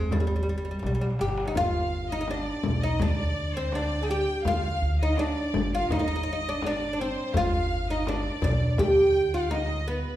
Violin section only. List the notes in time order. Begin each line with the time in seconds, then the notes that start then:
1.55 F5
2.09 D#5
2.28 D#5
2.39 D5
2.81 D#5
3.01 D5
3.55 C5
3.72 D5
4.07 G5
4.43 F5
5.00 D#5
5.18 D5
5.74 F5
5.92 D#5
6.62 D5
6.99 C5
7.35 F5
7.90 D#5
8.07 D5
8.79 G5
9.34 F5
9.52 D#5
9.87 B4